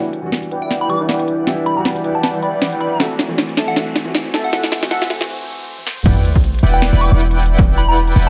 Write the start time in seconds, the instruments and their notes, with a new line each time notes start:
Already playing: grand piano E3 G3 D4 F#4, ambient pad E3 G3 D5, riser
0.13 closed hi-hat
0.22 grand piano E3 G3 D4 F#4
0.32 snare, closed hi-hat
0.43 closed hi-hat
0.51 supersaw synth E4 B4 D5 F#5 G5, closed hi-hat
0.62 digital synth lead G5
0.71 snare, closed hi-hat
0.81 supersaw synth E4 B4 D5 F#5 G5, digital synth lead B5
0.88 grand piano E3 G3 D4, digital synth lead D6, closed hi-hat
1.00 supersaw synth E4 B4 D5 F#5 G5
1.09 snare, closed hi-hat
1.19 closed hi-hat
1.28 closed hi-hat
1.46 grand piano E3 G3 D4 E4, snare, closed hi-hat
1.66 digital synth lead B5, closed hi-hat
1.75 grand piano E3 G3 D4 F#4, digital synth lead B5
1.85 snare, closed hi-hat
1.96 closed hi-hat
2.04 supersaw synth E4 B4 D5 F#5 G5, closed hi-hat
2.15 digital synth lead A5
2.23 supersaw synth E4 B4 D5 F#5 G5, digital synth lead A5, snare, closed hi-hat
2.42 supersaw synth E4 B4 D5 F#5 G5, digital synth lead B5, closed hi-hat
2.62 snare, closed hi-hat
2.72 supersaw synth E4 B4 D5 F#5 G5, closed hi-hat
2.81 digital synth lead B5, closed hi-hat
2.99 grand piano E3 A3 C4 F#4, ambient pad A3 F#4 C5, supersaw synth A4 E5 F#5, snare, closed hi-hat
3.19 snare, closed hi-hat
3.28 grand piano E3 A3 C4 F#4
3.38 snare, closed hi-hat
3.49 closed hi-hat
3.57 supersaw synth A4 E5 A5, snare, closed hi-hat
3.68 digital synth lead F#5
3.75 grand piano E3 A3 C4 F#4, supersaw synth A4 E5 F#5, snare, closed hi-hat
3.96 snare, closed hi-hat
4.04 grand piano E3 A3 C4 F#4
4.15 snare, closed hi-hat
4.25 closed hi-hat
4.34 supersaw synth A4 E5 A5, snare, closed hi-hat
4.44 digital synth lead F#5
4.52 grand piano E3 A3 C4 F#4, supersaw synth A4 E5 F#5, digital synth lead F#5, snare, closed hi-hat
4.64 snare
4.72 snare, closed hi-hat
4.81 grand piano E3 A3 C4, snare
4.85 grand piano F#4
4.90 grand piano E3 A3 C4 F#4, supersaw synth A4 E5 F#5, digital synth lead F#5, snare, closed hi-hat
5.02 snare, closed hi-hat
5.10 snare, closed hi-hat
5.19 grand piano E3 A3 C4 F#4, snare
5.78 high tom
5.87 snare
5.97 mid tom
6.06 808-style bass E1, supersaw synth E4 B4 D5 F#5 G5, kick, closed hi-hat, crash, sub drop
6.25 closed hi-hat
6.36 kick
6.44 closed hi-hat
6.55 closed hi-hat
6.59 closed hi-hat
6.63 808-style bass E1, supersaw synth E4 B4 D5 F#5 G5, closed hi-hat
6.67 closed hi-hat
6.69 closed hi-hat
6.74 digital synth lead G5
6.82 snare, closed hi-hat
6.93 808-style bass E1, supersaw synth E4 B4 D5 F#5 G5, digital synth lead B5
7.01 digital synth lead D6, closed hi-hat
7.12 808-style bass E1, supersaw synth E4 B4 D5 F#5 G5
7.20 closed hi-hat
7.31 closed hi-hat
7.39 closed hi-hat
7.43 closed hi-hat
7.46 closed hi-hat
7.59 kick, closed hi-hat
7.78 digital synth lead B5, closed hi-hat
7.88 digital synth lead B5
7.97 closed hi-hat
8.07 closed hi-hat
8.12 closed hi-hat
8.16 808-style bass E1, supersaw synth E4 B4 D5 F#5 G5, closed hi-hat
8.19 closed hi-hat
8.22 closed hi-hat